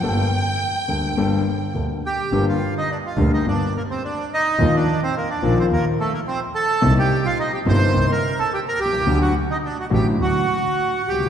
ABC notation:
X:1
M:4/4
L:1/16
Q:1/4=106
K:Gm
V:1 name="Violin section"
g12 z4 | z16 | z16 | z16 |
z16 |]
V:2 name="Bandoneon"
z12 z2 [Gg]2- | [Gg] [Ff]2 [Ee] [Dd] [Ff]2 [Ee] [Dd]2 [B,B] [Cc] [Dd]2 [Ee]2- | [Ee] [Dd]2 [Cc] [B,B] [Dd]2 [Cc] [B,B]2 [A,A] [B,B] [Cc]2 [Aa]2- | [Aa] [Gg]2 [Ff] [Ee] [Gg] [cc']3 [Bb]2 [Aa] [Gg] [Bb] [Gg]2- |
[Gg] [^F^f]2 [Ee] [Dd] [Ff] [Gg]2 [Ff]6 [Gg]2 |]
V:3 name="Grand piano" clef=bass
[G,,,G,,G,B,DA]2 z4 [D,,D,G,B,DA]2 [G,,,G,,G,B,DA]2 z2 [D,,D,G,B,DA]2 z2 | [G,,,G,,D,G,B,G]2 z4 [D,,D,G,B,G]2 [G,,,G,,D,G,B,G]2 z6 | [E,,E,F,B,F]2 z4 [B,,,B,,E,F,B,F]2 [E,,E,F,B,F]2 z6 | [C,,C,G,B,E]2 z4 [G,,,G,,C,G,B,E]2 [C,,C,G,B,E]2 z4 z/2 =B,,,/2 C,,/2 ^C,,/2 |
[D,,D,^F,A,^F]2 z4 [A,,,A,,D,F,A,F]2 [D,,D,F,A,F]2 z4 z/2 C,,/2 ^C,,/2 D,,/2 |]
V:4 name="Double bass" clef=bass
G,,,2 z4 D,,2 G,,,2 z2 D,,2 z2 | G,,,2 z4 D,,2 G,,,2 z6 | E,,2 z4 B,,,2 E,,2 z6 | C,,2 z4 G,,,2 C,,2 z4 C,,2 |
D,,2 z4 A,,,2 D,,2 z4 ^C,,2 |]